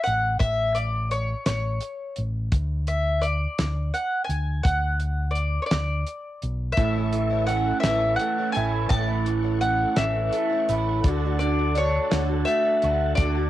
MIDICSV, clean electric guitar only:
0, 0, Header, 1, 2, 480
1, 0, Start_track
1, 0, Key_signature, 3, "major"
1, 0, Tempo, 709220
1, 272, Time_signature, 6, 3, 24, 8
1, 9136, End_track
2, 0, Start_track
2, 0, Title_t, "Clean electric guitar"
2, 0, Program_c, 0, 27
2, 4586, Note_on_c, 0, 45, 78
2, 4826, Note_on_c, 0, 52, 59
2, 5067, Note_on_c, 0, 61, 62
2, 5296, Note_off_c, 0, 52, 0
2, 5304, Note_on_c, 0, 52, 70
2, 5555, Note_on_c, 0, 57, 69
2, 5787, Note_off_c, 0, 45, 0
2, 5796, Note_on_c, 0, 64, 71
2, 6033, Note_on_c, 0, 45, 80
2, 6265, Note_off_c, 0, 52, 0
2, 6268, Note_off_c, 0, 61, 0
2, 6273, Note_on_c, 0, 52, 62
2, 6513, Note_on_c, 0, 61, 54
2, 6737, Note_off_c, 0, 52, 0
2, 6745, Note_on_c, 0, 52, 68
2, 6991, Note_off_c, 0, 57, 0
2, 6994, Note_off_c, 0, 64, 0
2, 6994, Note_on_c, 0, 57, 69
2, 7233, Note_off_c, 0, 45, 0
2, 7238, Note_on_c, 0, 64, 74
2, 7469, Note_off_c, 0, 52, 0
2, 7473, Note_off_c, 0, 61, 0
2, 7475, Note_off_c, 0, 64, 0
2, 7481, Note_on_c, 0, 50, 88
2, 7705, Note_off_c, 0, 50, 0
2, 7713, Note_on_c, 0, 50, 64
2, 7949, Note_on_c, 0, 62, 53
2, 8185, Note_off_c, 0, 50, 0
2, 8193, Note_on_c, 0, 50, 69
2, 8436, Note_off_c, 0, 57, 0
2, 8439, Note_on_c, 0, 57, 71
2, 8689, Note_on_c, 0, 66, 64
2, 8923, Note_off_c, 0, 50, 0
2, 8931, Note_on_c, 0, 50, 74
2, 9136, Note_off_c, 0, 50, 0
2, 9136, Note_off_c, 0, 57, 0
2, 9136, Note_off_c, 0, 62, 0
2, 9136, Note_off_c, 0, 66, 0
2, 9136, End_track
0, 0, End_of_file